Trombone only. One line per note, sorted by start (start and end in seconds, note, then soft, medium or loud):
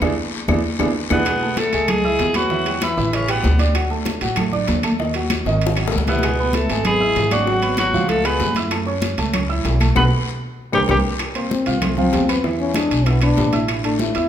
1.11 1.59 B2 medium
1.57 1.90 A3 medium
1.88 2.36 G#3 medium
2.35 2.80 F#3 medium
2.81 3.14 E3 medium
3.12 3.30 C#3 medium
3.28 3.59 B2 medium
6.07 6.56 B2 medium
6.54 6.84 A3 medium
6.84 7.32 G#3 medium
7.31 7.77 F#3 medium
7.78 8.09 F#3 medium
8.08 8.25 A3 medium
8.24 8.56 B3 medium
9.95 10.03 B3 loud
10.73 10.80 G3 medium
10.88 10.96 G3 medium
11.35 11.52 A#3 medium
11.51 11.83 C4 medium
11.82 11.97 A3 medium
11.98 12.41 C4 medium
12.60 12.76 C#4 medium
12.75 13.08 D4 medium
13.07 13.22 B3 medium
13.23 13.66 D4 loud
13.83 14.01 D4 medium
13.99 14.29 E4 medium